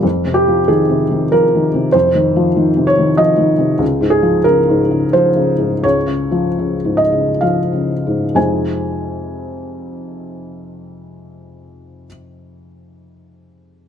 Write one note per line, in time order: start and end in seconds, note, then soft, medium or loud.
0.03 1.90 F2 soft
0.25 0.60 C3 soft
0.34 0.67 G4 medium
0.48 0.82 F3 soft
0.68 1.02 D#3 soft
0.68 1.31 G#4 soft
0.89 1.23 C3 soft
1.11 1.44 D#3 soft
1.32 1.66 F3 soft
1.32 1.94 A#4 medium
1.55 1.87 D#3 soft
1.74 2.07 C3 soft
1.92 3.77 F2 soft
1.92 2.87 C5 medium
2.15 2.48 D#3 soft
2.36 2.69 F3 soft
2.56 2.90 D#3 soft
2.77 3.10 C3 soft
2.87 3.19 C#5 medium
2.99 3.32 D#3 soft
3.17 3.51 F3 soft
3.17 3.80 D#5 medium
3.37 3.72 D#3 soft
3.58 3.80 C3 soft
3.78 5.78 C#2 soft
4.01 4.36 G#2 soft
4.10 4.45 G#4 medium
4.22 4.59 F3 soft
4.44 4.81 C#3 soft
4.44 5.13 A#4 medium
4.69 5.05 G#2 soft
4.91 5.27 C#3 soft
5.13 5.51 F3 soft
5.13 5.84 C5 medium
5.36 5.74 C#3 soft
5.58 5.98 G#2 soft
5.83 8.32 C#2 soft
5.83 7.00 C#5 medium
6.07 6.48 C#3 soft
6.32 6.74 F3 soft
6.59 7.02 C#3 soft
6.85 7.30 G#2 soft
6.97 7.41 D#5 soft
7.12 7.60 C#3 soft
7.41 7.92 F3 soft
7.41 8.35 F5 soft
7.73 8.23 C#3 soft
8.07 8.37 G#2 soft
8.35 12.06 F2 soft
8.35 12.07 C3 soft
8.35 12.07 G#3 soft
8.35 12.08 C4 soft
8.35 12.07 D#4 soft
8.35 12.08 F4 soft
8.35 12.07 G#5 soft